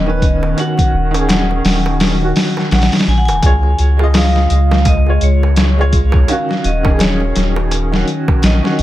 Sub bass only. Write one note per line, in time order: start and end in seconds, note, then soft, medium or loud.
0.00 0.55 D#1 medium
0.93 1.62 D#1 loud
1.64 2.33 D#1 loud
2.72 2.90 A#1 medium
3.08 3.30 A#1 loud
3.28 3.41 D#1 medium
3.43 3.75 C#2 loud
3.79 4.48 C#2 medium
4.51 5.19 C#2 loud
5.22 6.26 C#2 medium
6.65 7.33 D#1 medium
7.36 8.05 D#1 loud
8.43 8.62 A#1 medium
8.79 8.83 A#1 loud